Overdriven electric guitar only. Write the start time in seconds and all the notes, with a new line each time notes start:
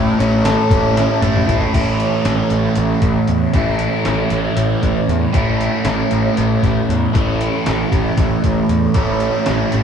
Already playing: A2 A3 C#4 E4 A4
0.19 C#4
0.45 A4
0.73 C#4
0.96 E4
1.22 A3
1.48 E4
1.73 A2 E3 A3
1.77 C#4 E4
3.54 A2 E3 A3 C#4 E4
5.33 A2 E3 A3 C#4 E4
7.13 A2 E3 A3 C#4 E4
8.94 A2 E3 A3 C#4 E4